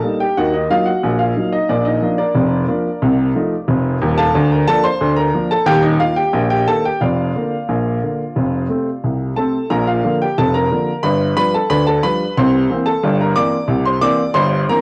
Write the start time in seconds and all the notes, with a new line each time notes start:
Already playing: A4 A5
0.04 G3 A#3 D#4
0.20 G4 G5
0.37 D#2 D#3 F#4 F#5
0.53 D#4 D#5
0.70 F#3 A#3 D#4 F4 F5
0.86 F#4 F#5
1.03 A#1 A#2
1.19 F4 F5
1.37 F#3 A#3 D#4
1.52 D#4 D#5
1.69 A#1 A#2 D4 D5
1.85 D#4 D#5
2.02 F3 A#3 D4
2.18 D4 A#4 D5
2.35 F1 F2
2.68 F3 A#3 D4
3.02 C2 C3
3.35 F3 A3 D#4
3.68 F1 F2
4.01 D#1 D#2
4.18 A4 F5 A5
4.34 D2 D3
4.52 A#4 A#5
4.67 F3 A#3 D4 A4 A5
4.84 C5 C6
5.01 D2 D3
5.16 A#4 A#5
5.34 F3 A#3 D4
5.51 A4 A5
5.66 D#1 D#2 G4 G5
5.83 D#4 D#5
6.00 D#3 A#3 F4 F5
6.16 G4 G5
6.33 A#1 A#2
6.50 G4 G5
6.67 D#3 A#3 A4 A5
6.85 G4 G5
7.01 F1 F2 F4 D5 F5
7.35 D3 A#3
7.69 A#1 A#2
8.03 D3 A#3
8.36 F1 F2
8.69 C3 A3 C4
9.04 C2 C3
9.36 C3 A3 C4 A4 A5
9.70 A#1 A#2 A#4 A#5
9.87 F4 F5
10.04 D3 F3 A#3
10.22 G4 G5
10.38 F1 F2 A4 A5
10.54 A#4 A#5
10.71 D3 F3 A#3
11.03 G1 G2 B4 B5
11.37 F3 G3 D4 B4 B5
11.54 A4 A5
11.70 D2 D3 B4 B5
11.87 A4 A5
12.03 F3 G3 D4 B4 B5
12.37 C2 C3 C5 C6
12.70 E3 A#3 C4
12.86 A4 A5
13.03 G1 G2
13.21 A#4 A#5
13.36 E3 A#3 C4 D5 D6
13.68 C2 C3
13.85 C5 C6
14.01 E3 A#3 C4 D5 D6
14.34 G1 G2 C5 C6
14.69 E3 A#3 C4 A#4 A#5